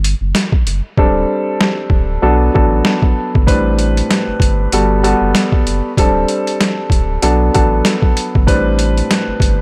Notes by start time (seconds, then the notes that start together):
Already playing: G1
0.04 closed hi-hat
0.21 F#1
0.35 snare, closed hi-hat
0.52 kick
0.67 F#1, closed hi-hat
0.97 D1 G3 C4 D4 A4, kick
1.61 snare
1.90 D1, kick
2.22 B1 F#3 B3 D4 A4
2.54 A1 F#3 B3 D4 A4, kick
2.85 snare
3.02 kick
3.35 G1, kick
3.46 A1 A2 G3 C4 D4 B4, kick, closed hi-hat
3.79 closed hi-hat
3.97 closed hi-hat
4.11 snare, closed hi-hat
4.28 G1
4.40 G1, kick, closed hi-hat
4.72 G1 G3 B3 F#4 A4, closed hi-hat
5.03 G3 B3 F#4 A4, closed hi-hat
5.21 F#1
5.35 snare, closed hi-hat
5.52 kick
5.67 F#1, closed hi-hat
5.97 D1 G3 C4 D4 A4, kick, closed hi-hat
6.28 closed hi-hat
6.47 closed hi-hat
6.61 snare, closed hi-hat
6.90 D1, kick, closed hi-hat
7.22 B1 F#3 B3 D4 A4, closed hi-hat
7.54 A1 F#3 B3 D4 A4, kick, closed hi-hat
7.85 snare, closed hi-hat
8.02 kick
8.17 closed hi-hat
8.35 G1, kick
8.47 A1 A2 G3 C4 D4 B4, kick, closed hi-hat
8.79 closed hi-hat
8.97 closed hi-hat
9.11 snare, closed hi-hat
9.28 G1
9.40 G1, kick, closed hi-hat